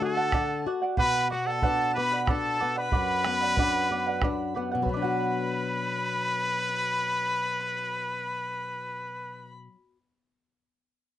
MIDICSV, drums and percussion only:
0, 0, Header, 1, 2, 480
1, 0, Start_track
1, 0, Key_signature, 2, "minor"
1, 0, Tempo, 647948
1, 729, Time_signature, 3, 2, 24, 8
1, 8286, End_track
2, 0, Start_track
2, 0, Title_t, "Bombo"
2, 121, Note_on_c, 9, 37, 26
2, 195, Note_off_c, 9, 37, 0
2, 240, Note_on_c, 9, 37, 84
2, 240, Note_on_c, 9, 43, 74
2, 314, Note_off_c, 9, 37, 0
2, 314, Note_off_c, 9, 43, 0
2, 721, Note_on_c, 9, 43, 79
2, 795, Note_off_c, 9, 43, 0
2, 1203, Note_on_c, 9, 37, 24
2, 1203, Note_on_c, 9, 43, 77
2, 1277, Note_off_c, 9, 37, 0
2, 1277, Note_off_c, 9, 43, 0
2, 1563, Note_on_c, 9, 37, 28
2, 1637, Note_off_c, 9, 37, 0
2, 1685, Note_on_c, 9, 37, 82
2, 1685, Note_on_c, 9, 43, 84
2, 1759, Note_off_c, 9, 37, 0
2, 1759, Note_off_c, 9, 43, 0
2, 2163, Note_on_c, 9, 37, 25
2, 2163, Note_on_c, 9, 43, 83
2, 2237, Note_off_c, 9, 37, 0
2, 2237, Note_off_c, 9, 43, 0
2, 2404, Note_on_c, 9, 37, 87
2, 2478, Note_off_c, 9, 37, 0
2, 2526, Note_on_c, 9, 37, 26
2, 2600, Note_off_c, 9, 37, 0
2, 2645, Note_on_c, 9, 43, 85
2, 2720, Note_off_c, 9, 43, 0
2, 3123, Note_on_c, 9, 37, 83
2, 3123, Note_on_c, 9, 43, 81
2, 3197, Note_off_c, 9, 37, 0
2, 3197, Note_off_c, 9, 43, 0
2, 3599, Note_on_c, 9, 43, 59
2, 3673, Note_off_c, 9, 43, 0
2, 8286, End_track
0, 0, End_of_file